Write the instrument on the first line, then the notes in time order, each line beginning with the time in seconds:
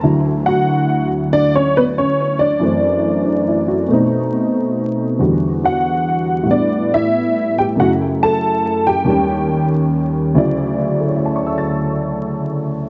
honky-tonk piano
0.03 D2 D3 F#3 E4
0.46 F#4 F#5
1.33 D4 D5
1.55 C#4 C#5
1.77 B3 B4
1.98 C#4 C#5
2.39 D4 D5
2.59 F#2 E3 A3
2.65 C4
3.26 D4
3.48 E4
3.68 F#4
3.89 B2 A3 C4
3.94 D#4
5.19 E2 D3 G3 F#4
5.65 F#4 F#5
6.43 A2 G3
6.50 B3 D4 D5
6.94 E4 E5
7.58 G4 G5
7.75 F#2 C#3 A3
7.80 E4 F#4 F#5
8.23 A4 A5
8.87 G4 G5
9.04 D#2 D#3 G3
9.10 C#4
10.35 D2 C#3 F#3 E4 D5
11.00 A4
11.08 C#5
11.16 E5
11.26 A5
11.36 C#6
11.46 E6
11.58 A6